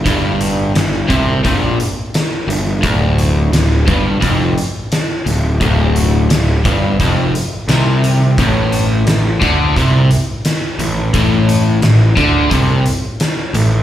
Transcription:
<<
  \new Staff \with { instrumentName = "Overdriven electric guitar" } { \clef bass \time 4/4 \key a \dorian \tempo 4 = 87 g,4 g,8 c8 bes,8 r4 g,8 | d,4 d,8 g,8 f,8 r4 d,8 | d,4 d,8 g,8 f,8 r8 c4 | a,4 a,8 d8 c8 r4 a,8 |
a,4 a,8 d8 c8 r4 a,8 | }
  \new Staff \with { instrumentName = "Picked electric bass" } { \clef bass \time 4/4 \key a \dorian g,,4 g,,8 c,8 bes,,8 r4 g,,8 | d,,4 d,,8 g,,8 f,,8 r4 d,,8 | d,,4 d,,8 g,,8 f,,8 r8 c,4 | a,,4 a,,8 d,8 c,8 r4 a,,8 |
a,,4 a,,8 d,8 c,8 r4 a,,8 | }
  \new DrumStaff \with { instrumentName = "Drums" } \drummode { \time 4/4 <hh bd>8 hh8 <hh sn>8 <hh bd>8 <hh bd>8 hh8 <hh sn>8 hh8 | <hh bd>8 hh8 <hh sn>8 <hh bd>8 <hh bd>8 hh8 <hh sn>8 hh8 | <hh bd>8 hh8 <hh sn>8 <hh bd>8 <hh bd>8 hh8 <hh sn>8 hh8 | <hh bd>8 hh8 <hh sn>8 <hh bd>8 <hh bd>8 hh8 <hh sn>8 hh8 |
<hh bd>8 hh8 <hh sn>8 <hh bd>8 <hh bd>8 hh8 <hh sn>8 hh8 | }
>>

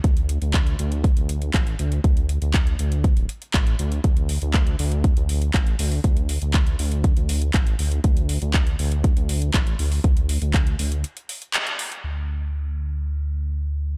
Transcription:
<<
  \new Staff \with { instrumentName = "Detuned saw bass" } { \clef bass \time 4/4 \key c \mixolydian \tempo 4 = 120 d,8. d,8. d,8. d,8. a,,8 d,8 | d,8. d,8. d,8. d,,16 r8 a,,8 d,8 | d,8. d,8. d,8. d,8. a,,8 d,8 | d,8. d,8. d,8. d,8. a,,8 d,8 |
d,8. d,8. d,8. d,8. a,,8 d,8 | d,8. d,8. d,8 r2 | d,1 | }
  \new DrumStaff \with { instrumentName = "Drums" } \drummode { \time 4/4 <hh bd>16 hh16 hh16 hh16 <hc hh bd>16 hh16 hh16 hh16 <hh bd>16 hh16 hh16 hh16 <hc hh bd>16 hh16 hh16 hh16 | <hh bd>16 hh16 hh16 hh16 <hc hh bd>16 hh16 hh16 hh16 <hh bd>16 hh16 hh16 hh16 <hc hh bd>16 hh16 hh16 hh16 | <hh bd>16 hh16 hho16 hh16 <hc hh bd>16 hh16 hho16 hh16 <hh bd>16 hh16 hho16 hh16 <hc hh bd>16 hh16 hho16 hho16 | <hh bd>16 hh16 hho16 hh16 <hc hh bd>16 hh16 hho16 hh16 <hh bd>16 hh16 hho16 hh16 <hc hh bd>16 hh16 hho16 hh16 |
<hh bd>16 hh16 hho16 hh16 <hc hh bd>16 hh16 hho16 hh16 <hh bd>16 hh16 hho16 hh16 <hc hh bd>16 hh16 hho16 hho16 | <hh bd>16 hh16 hho16 hh16 <hc hh bd>16 hh16 hho16 hh16 hh16 hh16 hho16 hh16 <hc hh>16 hh16 hho16 hh16 | cymc4 r4 r4 r4 | }
>>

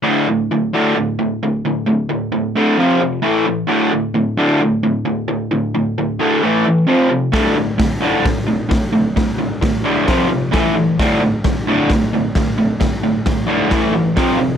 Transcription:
<<
  \new Staff \with { instrumentName = "Overdriven electric guitar" } { \clef bass \time 4/4 \key a \dorian \tempo 4 = 132 <d, a, d>8 <d, a,>8 <d, a,>8 <d, a, d>8 <d, a,>8 <d, a,>8 <d, a,>8 <d, a,>8 | <d, a,>8 <d, a,>8 <d, a,>8 <d, a, d>8 <f, c f>8 <f, c>8 <a, e a>8 <a, e>8 | <d, a, d>8 <d, a,>8 <d, a,>8 <d, a, d>8 <d, a,>8 <d, a,>8 <d, a,>8 <d, a,>8 | <d, a,>8 <d, a,>8 <d, a,>8 <d, a, d>8 <a, e a>8 <a, e>8 <f, c f>8 <f, c>8 |
<d, a, d>8 <d, a,>8 <d, a,>8 <d, a, d>8 <d, a,>8 <d, a,>8 <d, a,>8 <d, a,>8 | <d, a,>8 <d, a,>8 <d, a,>8 <d, a, d>8 <f, c f>8 <f, c>8 <a, e a>8 <a, e>8 | <d, a, d>8 <d, a,>8 <d, a,>8 <d, a, d>8 <d, a,>8 <d, a,>8 <d, a,>8 <d, a,>8 | <d, a,>8 <d, a,>8 <d, a,>8 <d, a, d>8 <a, e a>8 <a, e>8 <f, c f>8 <f, c>8 | }
  \new DrumStaff \with { instrumentName = "Drums" } \drummode { \time 4/4 r4 r4 r4 r4 | r4 r4 r4 r4 | r4 r4 r4 r4 | r4 r4 r4 r4 |
<hho bd sn>4 <hho bd sn>4 <hho bd sn>4 <hho bd sn>4 | <hho bd sn>4 <hho bd sn>4 <hho bd sn>4 <hho bd sn>4 | <hho bd sn>4 <hho bd sn>4 <hho bd sn>4 <hho bd sn>4 | <hho bd sn>4 <hho bd sn>4 <hho bd sn>4 <hho bd sn>4 | }
>>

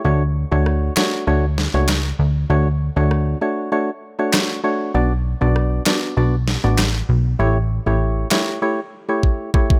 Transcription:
<<
  \new Staff \with { instrumentName = "Synth stab" } { \time 4/4 \key d \major \tempo 4 = 98 <a d' fis' cis''>16 r8 <a d' fis' cis''>8. <a d' fis' cis''>8 <a d' fis' cis''>16 r8 <a d' fis' cis''>16 r4 | <a d' fis' cis''>16 r8 <a d' fis' cis''>8. <a d' fis' cis''>8 <a d' fis' cis''>16 r8 <a d' fis' cis''>8. <a d' fis' cis''>8 | <b d' fis' d''>16 r8 <b d' fis' d''>8. <b d' fis' d''>8 <b d' fis' d''>16 r8 <b d' fis' d''>16 r4 | <a e' g' cis''>16 r8 <a e' g' cis''>8. <a e' g' cis''>8 <a e' g' cis''>16 r8 <a e' g' cis''>8. <a e' g' cis''>8 | }
  \new Staff \with { instrumentName = "Analog synth bass" } { \clef bass \time 4/4 \key d \major d,8. d,8. r8 d,8. cis,8. d,8 | d,8. d,8. r2 r8 | b,,8. b,,8. r8 b,,8. a,,8. b,,8 | a,,8. a,,8. r2 r8 | }
  \new DrumStaff \with { instrumentName = "Drums" } \drummode { \time 4/4 r4 ss8 <hc sn>8 r8 sn8 <hc ss sn>4 | r4 ss4 r4 <hc ss sn>4 | r4 ss8 <hc sn>8 r8 sn8 <hc ss sn>4 | r4 r8 <hc sn>8 r4 bd8 bd16 bd16 | }
>>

